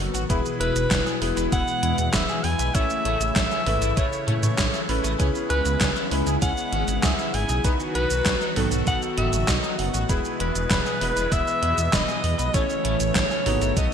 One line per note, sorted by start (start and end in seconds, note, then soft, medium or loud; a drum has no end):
0.00 0.10 F#1 loud
0.00 0.27 D#3 medium
0.00 0.27 F#3 medium
0.00 0.26 B3 medium
0.00 0.26 D#4 medium
0.00 0.26 F#4 medium
0.00 0.27 F#4 medium
0.00 0.26 A4 loud
0.14 0.25 A1 medium
0.14 0.22 F#4 medium
0.14 closed hi-hat medium
0.14 shaker medium
0.30 0.41 E1 loud
0.30 2.72 B2 medium
0.30 5.16 E3 medium
0.30 2.72 G#3 medium
0.30 1.18 B3 medium
0.30 0.37 E4 loud
0.30 1.18 E4 medium
0.30 7.61 E4 medium
0.30 1.18 G#4 medium
0.30 1.18 B4 medium
0.30 kick loud
0.30 closed hi-hat medium
0.30 shaker soft
0.46 shaker soft
0.60 0.71 E1 medium
0.60 0.72 E4 medium
0.60 1.18 B4 loud
0.60 closed hi-hat medium
0.76 0.87 E1 medium
0.76 closed hi-hat medium
0.76 shaker medium
0.91 1.02 E1 loud
0.91 0.99 B4 medium
0.91 kick loud
0.91 snare loud
0.91 clap medium
0.91 closed hi-hat medium
0.91 shaker medium
1.06 1.14 G#4 medium
1.06 shaker soft
1.22 1.33 E1 loud
1.22 2.71 B3 medium
1.22 2.71 E4 medium
1.22 2.71 G#4 medium
1.22 2.71 B4 loud
1.22 open hi-hat medium
1.37 1.48 E1 medium
1.37 1.45 B4 medium
1.37 closed hi-hat medium
1.37 shaker medium
1.52 1.63 E1 loud
1.52 1.60 E4 loud
1.52 2.15 F#5 loud
1.52 kick loud
1.52 closed hi-hat medium
1.52 shaker soft
1.68 shaker soft
1.83 1.94 E2 medium
1.83 1.94 E4 medium
1.83 closed hi-hat medium
1.98 2.09 E2 medium
1.98 closed hi-hat medium
1.98 shaker medium
2.13 2.24 E1 loud
2.13 2.21 B4 medium
2.13 2.45 E5 loud
2.13 kick loud
2.13 snare loud
2.13 clap medium
2.13 closed hi-hat medium
2.13 shaker soft
2.29 2.37 G#4 medium
2.29 shaker soft
2.44 2.55 E2 loud
2.44 2.76 G#5 loud
2.44 open hi-hat medium
2.59 2.70 B1 medium
2.59 2.67 B4 medium
2.59 closed hi-hat medium
2.59 shaker medium
2.74 2.86 A1 loud
2.74 7.61 C#3 medium
2.74 5.17 A3 medium
2.74 2.82 A3 loud
2.74 3.63 C#4 medium
2.74 3.63 E4 medium
2.74 3.63 A4 medium
2.74 3.63 C#5 medium
2.74 3.35 E5 loud
2.74 kick loud
2.74 closed hi-hat medium
2.74 shaker medium
2.90 shaker soft
3.05 3.16 A1 medium
3.05 3.17 A3 medium
3.05 closed hi-hat medium
3.21 3.32 A1 medium
3.21 closed hi-hat medium
3.21 shaker medium
3.36 3.47 A1 loud
3.36 3.44 E4 medium
3.36 3.98 E5 loud
3.36 kick loud
3.36 snare loud
3.36 clap medium
3.36 closed hi-hat medium
3.36 shaker medium
3.51 3.59 C#4 medium
3.51 shaker soft
3.66 3.77 A1 medium
3.66 4.40 C#4 medium
3.66 4.40 E4 medium
3.66 4.40 A4 medium
3.66 4.40 B4 medium
3.66 mid tom medium
3.66 open hi-hat medium
3.82 3.93 A1 medium
3.82 3.89 E4 medium
3.82 closed hi-hat medium
3.82 shaker medium
3.97 4.08 A1 loud
3.97 4.05 A3 loud
3.97 4.27 C#5 loud
3.97 kick loud
3.97 closed hi-hat medium
3.97 shaker soft
4.13 shaker soft
4.27 4.39 A2 loud
4.27 4.32 A3 medium
4.27 4.85 C#5 medium
4.27 closed hi-hat medium
4.27 mid tom medium
4.43 4.54 A2 medium
4.43 4.85 C#4 medium
4.43 4.85 E4 medium
4.43 4.85 A4 medium
4.43 4.85 C#5 medium
4.43 closed hi-hat medium
4.43 shaker medium
4.58 4.69 A1 loud
4.58 4.63 E4 medium
4.58 kick loud
4.58 snare loud
4.58 clap medium
4.58 closed hi-hat medium
4.58 shaker medium
4.73 4.78 A3 medium
4.73 shaker soft
4.89 5.00 A1 loud
4.89 5.16 C#4 medium
4.89 5.16 E4 medium
4.89 5.16 A4 medium
4.89 5.16 B4 loud
4.89 open hi-hat medium
5.04 5.15 A1 medium
5.04 5.12 A3 medium
5.04 closed hi-hat medium
5.04 shaker medium
5.19 5.31 C#2 loud
5.19 7.62 G#3 medium
5.19 10.05 B3 medium
5.19 5.27 C#4 loud
5.19 6.08 C#4 medium
5.19 6.08 E4 medium
5.19 6.08 G#4 medium
5.19 6.08 B4 medium
5.19 kick loud
5.19 closed hi-hat medium
5.19 shaker medium
5.35 shaker soft
5.50 5.61 C#2 medium
5.50 5.62 C#4 medium
5.50 6.07 B4 loud
5.50 closed hi-hat medium
5.65 5.76 C#2 medium
5.65 closed hi-hat medium
5.65 shaker medium
5.81 5.92 C#2 loud
5.81 5.88 G#4 medium
5.81 kick loud
5.81 snare loud
5.81 clap medium
5.81 closed hi-hat medium
5.81 shaker medium
5.96 6.04 E4 medium
5.96 shaker soft
6.11 6.22 C#2 medium
6.11 7.61 C#4 medium
6.11 7.61 E4 medium
6.11 7.61 G#4 medium
6.11 7.61 B4 loud
6.11 open hi-hat medium
6.27 6.38 C#2 medium
6.27 6.34 G#4 medium
6.27 closed hi-hat medium
6.27 shaker medium
6.42 6.53 C#2 loud
6.42 6.50 C#4 loud
6.42 7.04 F#5 loud
6.42 kick loud
6.42 closed hi-hat medium
6.42 shaker medium
6.57 shaker soft
6.72 6.84 G#1 loud
6.72 6.84 C#4 medium
6.72 closed hi-hat medium
6.88 6.99 G#1 medium
6.88 closed hi-hat medium
6.88 shaker medium
7.03 7.14 C#2 loud
7.03 7.11 G#4 medium
7.03 7.35 E5 medium
7.03 kick loud
7.03 snare loud
7.03 clap medium
7.03 closed hi-hat medium
7.03 shaker medium
7.19 7.26 E4 medium
7.19 shaker soft
7.34 7.45 G#1 loud
7.34 7.64 G#5 loud
7.34 open hi-hat medium
7.49 7.60 B1 medium
7.49 7.57 G#4 medium
7.49 closed hi-hat soft
7.49 shaker medium
7.64 7.76 B1 loud
7.64 10.07 D#3 medium
7.64 10.07 F#3 medium
7.64 8.53 B3 medium
7.64 7.72 B3 loud
7.64 8.53 D#4 medium
7.64 10.07 F#4 medium
7.64 8.53 F#4 medium
7.64 8.53 B4 medium
7.64 kick loud
7.64 closed hi-hat medium
7.64 shaker medium
7.80 shaker soft
7.95 8.06 B1 loud
7.95 8.07 B3 medium
7.95 8.52 B4 loud
7.95 closed hi-hat medium
8.10 8.22 B1 medium
8.10 closed hi-hat medium
8.10 shaker medium
8.26 8.37 B1 loud
8.26 8.33 F#4 medium
8.26 kick loud
8.26 snare loud
8.26 clap loud
8.26 closed hi-hat medium
8.26 shaker medium
8.41 8.49 D#4 medium
8.41 shaker soft
8.56 8.67 B1 loud
8.56 10.06 D#3 medium
8.56 10.06 B3 medium
8.56 10.06 F#4 medium
8.56 10.06 A4 loud
8.56 mid tom medium
8.56 open hi-hat medium
8.72 8.83 B1 medium
8.72 8.79 F#4 medium
8.72 closed hi-hat medium
8.72 shaker medium
8.87 8.98 B1 loud
8.87 8.95 B3 loud
8.87 9.01 F#5 loud
8.87 kick loud
8.87 closed hi-hat medium
8.87 shaker soft
9.02 shaker soft
9.18 9.29 F#1 loud
9.18 9.29 B3 medium
9.18 9.50 E5 loud
9.18 closed hi-hat medium
9.18 mid tom medium
9.33 9.44 F#1 medium
9.33 closed hi-hat medium
9.33 shaker medium
9.48 9.59 B1 loud
9.48 9.56 F#4 medium
9.48 9.80 D#5 medium
9.48 kick loud
9.48 snare loud
9.48 clap medium
9.48 closed hi-hat medium
9.48 shaker medium
9.64 9.71 D#4 medium
9.64 shaker soft
9.79 9.90 F#1 loud
9.79 10.09 F#5 medium
9.79 open hi-hat medium
9.94 10.05 A1 medium
9.94 10.02 F#4 medium
9.94 closed hi-hat medium
9.94 shaker medium
10.09 10.20 E1 loud
10.09 12.52 B2 medium
10.09 12.52 E3 medium
10.09 12.52 G#3 medium
10.09 10.98 B3 medium
10.09 13.73 B3 medium
10.09 10.17 E4 loud
10.09 10.98 E4 medium
10.09 10.98 G#4 medium
10.09 10.98 B4 medium
10.09 kick loud
10.09 closed hi-hat medium
10.09 shaker soft
10.25 shaker soft
10.40 10.51 E1 loud
10.40 10.51 E4 medium
10.40 11.34 B4 loud
10.40 closed hi-hat medium
10.55 10.66 E1 medium
10.55 closed hi-hat medium
10.55 shaker medium
10.71 10.82 E1 loud
10.71 10.78 B4 medium
10.71 kick loud
10.71 snare loud
10.71 clap loud
10.71 closed hi-hat medium
10.71 shaker medium
10.86 10.94 G#4 medium
10.86 shaker soft
11.01 11.12 E1 loud
11.01 12.51 B3 medium
11.01 12.51 E4 medium
11.01 12.51 G#4 medium
11.01 12.51 B4 loud
11.01 open hi-hat medium
11.16 11.28 E1 medium
11.16 11.24 B4 medium
11.16 closed hi-hat medium
11.16 shaker medium
11.32 11.43 E1 loud
11.32 11.39 E4 loud
11.32 11.95 E5 loud
11.32 kick loud
11.32 closed hi-hat medium
11.32 shaker medium
11.47 shaker soft
11.62 11.73 E2 loud
11.62 11.74 E4 medium
11.62 closed hi-hat medium
11.78 11.89 E2 medium
11.78 closed hi-hat medium
11.78 shaker medium
11.93 12.04 E1 loud
11.93 12.01 B4 medium
11.93 12.56 D#5 loud
11.93 kick loud
11.93 snare loud
11.93 clap loud
11.93 closed hi-hat medium
11.93 shaker soft
12.08 12.16 G#4 medium
12.08 shaker soft
12.24 12.35 E2 loud
12.24 open hi-hat medium
12.39 12.50 B1 medium
12.39 12.47 B4 medium
12.39 closed hi-hat medium
12.39 shaker medium
12.54 12.65 A1 loud
12.54 13.76 C#3 medium
12.54 13.75 E3 medium
12.54 13.75 A3 medium
12.54 12.62 A3 loud
12.54 13.42 C#4 medium
12.54 13.42 E4 medium
12.54 13.42 A4 medium
12.54 13.42 C#5 medium
12.54 13.15 C#5 loud
12.54 kick loud
12.54 closed hi-hat medium
12.54 shaker medium
12.70 shaker soft
12.85 12.96 A1 medium
12.85 12.96 A3 medium
12.85 closed hi-hat medium
13.00 13.11 A1 medium
13.00 closed hi-hat medium
13.00 shaker medium
13.15 13.26 A1 loud
13.15 13.23 E4 medium
13.15 13.78 C#5 loud
13.15 kick loud
13.15 snare loud
13.15 clap loud
13.15 closed hi-hat medium
13.15 shaker soft
13.31 13.39 C#4 medium
13.31 shaker soft
13.46 13.57 A1 loud
13.46 13.94 B3 medium
13.46 13.94 D#4 medium
13.46 13.94 F#4 medium
13.46 13.94 A4 loud
13.46 mid tom medium
13.46 open hi-hat medium
13.61 13.72 A1 medium
13.61 13.69 E4 medium
13.61 closed hi-hat medium
13.61 shaker medium
13.77 13.88 B1 loud
13.77 13.94 D#3 medium
13.77 13.94 F#3 medium
13.77 13.94 B3 medium
13.77 13.85 B3 loud
13.77 13.94 F#4 medium
13.77 13.94 D#5 loud
13.77 kick loud
13.77 closed hi-hat medium
13.77 shaker soft